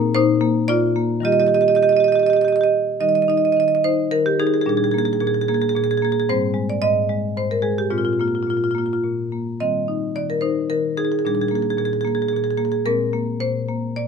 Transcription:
Already playing: A#2 A#3 D#4 A#4
0.15 A#2 D#4 C5
0.41 A#3
0.68 A#2 F4 D5
0.96 A#3
1.20 D#3 G3 F4
1.25 G4 D#5
1.32 G4 D#5
1.40 G4 D#5
1.47 G4 D#5
1.54 G4 D#5
1.61 G4 D#5
1.68 G4 D#5
1.75 G4 D#5
1.83 G4 D#5
1.89 G4 D#5
1.97 G4 D#5
2.04 G4 D#5
2.12 G4 D#5
2.19 G4 D#5
2.26 G4 D#5
2.33 G4 D#5
2.41 G4 D#5
2.48 D#5
2.52 G4 D#5
2.61 G4 D#5
3.00 D#3 G3 D#4 D#5
3.09 D#5
3.15 D#5
3.22 D#5
3.28 D#4 D#5
3.38 D#5
3.45 D#5
3.52 D#3 D#5
3.60 D#5
3.68 D#5
3.75 D#5
3.84 D#4 C5
4.11 D#3 A#4
4.26 G4
4.40 D#4 G#4
4.47 G#4
4.54 G#4
4.62 G#4
4.66 A#2 G3 D4 G#4
4.77 G#4
4.84 G#4
4.91 A#3 G#4
4.98 G#4
5.05 G#4
5.13 G#4
5.20 A#2 G#4
5.27 G#4
5.34 G#4
5.41 G#4
5.48 A#3 G#4
5.54 G#4
5.62 G#4
5.69 G#4
5.75 A#2 G#4
5.84 G#4
5.91 G#4
5.97 G#4
6.02 A#3 G#4
6.12 G#4
6.20 G#4
6.29 G#2 G3 C4 C5
6.54 G#3
6.70 D5
6.82 G#2 D#5
7.09 G#3
7.37 G#2 C5
7.51 A#4
7.62 G#3 G#4
7.78 G4
7.90 A#2 G#3 C4 F4
7.98 F4
8.05 F4
8.13 F4
8.20 A#3 F4
8.28 F4
8.35 F4
8.43 A#2 F4
8.50 F4
8.57 F4
8.64 F4
8.71 A#3 F4
8.78 F4
8.86 F4
8.93 F4
9.03 A#2
9.32 A#3
9.60 D#3 G3 C4 D#5
9.88 D#4
10.16 D#3 D5
10.30 A#4
10.41 D#4 C5
10.70 D#3 A#4
10.97 D#4 G#4
11.05 G#4
11.12 G#4
11.19 G#4
11.25 A#2 G3 D4 G#4
11.35 G#4
11.41 G#4
11.48 A#3 G#4
11.55 G#4
11.62 G#4
11.70 G#4
11.78 A#2 G#4
11.85 G#4
11.93 G#4
12.01 A#3 G#4
12.07 G#4
12.15 G#4
12.22 G#4
12.28 G#4
12.33 A#2 G#4
12.44 G#4
12.51 G#4
12.57 A#3 G#4
12.65 G#4
12.72 G#4
12.85 A#2 G#3 C4 A#4
13.13 A#3
13.40 A#2 C5
13.68 A#3
13.96 A#2 D5

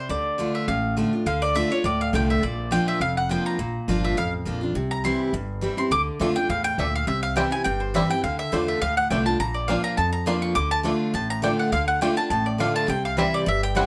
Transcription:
0.09 D2 D3 D5
0.38 D3 A3 D4 F4
0.55 E5
0.68 A1 A2 F5
0.97 D3 A3 D4 F4
1.13 D4 F4
1.26 D2 D3 F5
1.42 D5
1.55 D3 A3 D4 F4 E5
1.70 D4 F4 C#5
1.84 D2 A2 D5
2.01 F5
2.13 C2 D3 A3 D4 F4 G5
2.30 E5
2.43 A#1 A#2 D5
2.71 F3 A#3 D4 F4 G5
2.88 E5
3.00 F1 F2 F5
3.17 F#5
3.29 F3 A#3 D4 F4 G5
3.46 A#5
3.59 A#1 A#2
3.88 G1 F3 A#3 D4 F4
4.05 E5
4.17 A1 F2 F5
4.45 A#1 F3 A#3 D4 F4
4.61 D4 F4
4.75 C2 C3
4.91 A#5
5.04 E3 G3 C4 E4 C6
5.33 G1 G2
5.61 E3 G3 C4 E4
5.77 C4 E4 C6
5.91 D2 D3 D6
6.20 F2 D3 A3 D4 F4
6.35 D4 F4 G5
6.49 E2 A2 F5
6.64 G5
6.78 D2 A#2 A3 D4 E5
6.96 F5
7.07 C2 C3 E5
7.23 F5
7.36 E3 G3 C4 E4 G5
7.51 C4 E4 G#5
7.64 G1 G2 G5
7.80 C5
7.94 E3 G3 C4 E4 E5
8.10 C4 E4 G5
8.24 D2 D3 F5
8.39 E5
8.52 E2 D3 A3 D4 F4 C5
8.68 E5
8.81 D2 A2 F5
8.97 F#5
9.10 C2 D3 A3 D4 F4 G5
9.26 D4 F4 A5
9.40 A#1 A#2 A#5
9.54 D5
9.68 F3 A#3 D4 F4 F5
9.84 A#5
9.97 F2 A5
10.13 A#5
10.26 F3 A#3 D4 F4 C6
10.42 C#6
10.55 D2 D3 D6
10.71 A5
10.83 D3 A3 D4 F4
11.14 A1 A2 A5
11.30 A#5
11.42 D3 A3 D4 F4 G5
11.59 F#5
11.72 D2 D3 F5
11.88 F#5
12.01 D3 A3 D4 F4 G5
12.16 D4 F4 A5
12.30 A1 A2 A5
12.46 D5
12.58 D3 A3 D4 F4 F5
12.76 A5
12.88 C2 C3 G5
13.05 F5
13.17 E3 G3 C4 E4 E5
13.34 D5
13.46 G1 G2 E5
13.63 G5
13.75 E3 G3 C4 E4 F#5

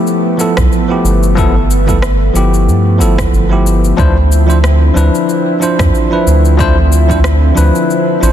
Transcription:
Already playing: F3 A3 B3 E4 G4
0.07 cabasa
0.38 F3 B3 E4 A4, cabasa
0.57 B1, kick, cross-stick, cabasa
0.72 cabasa
0.88 F3 B3 E4 G4
1.04 G1, cabasa
1.23 cabasa
1.35 F3 B3 E4 A4, kick, cabasa
1.71 cabasa
1.86 F3 B3 E4 A4, kick, cabasa
2.02 cross-stick, cabasa
2.33 G1 F3 B3 E4 G4, cabasa
2.54 cabasa
2.67 G2, cabasa
2.98 G1 F3 B3 E4 A4, cabasa
3.18 kick, cross-stick, cabasa
3.32 G1, cabasa
3.49 F3 B3 E4 G4
3.67 cabasa
3.84 cabasa
3.97 D2 D3 F3 C4 D4 E4 C5, kick, cabasa
4.32 cabasa
4.47 F3 D4 E4 C5, cabasa
4.64 cross-stick, cabasa
4.94 D2 F3 D4 E4 B4, cabasa
5.15 cabasa
5.29 cabasa
5.60 F3 D4 E4 C5, cabasa
5.79 F2, kick, cross-stick, cabasa
5.95 cabasa
6.10 F3 D4 E4 B4
6.27 D2, cabasa
6.45 cabasa
6.57 F3 D4 E4 C5, kick, cabasa
6.92 cabasa
7.08 F3 D4 E4 C5, kick, cabasa
7.24 cross-stick, cabasa
7.55 D2 F3 D4 E4 B4, cabasa
7.75 cabasa
7.90 cabasa
8.20 A1 F3 D4 E4 C5, cabasa

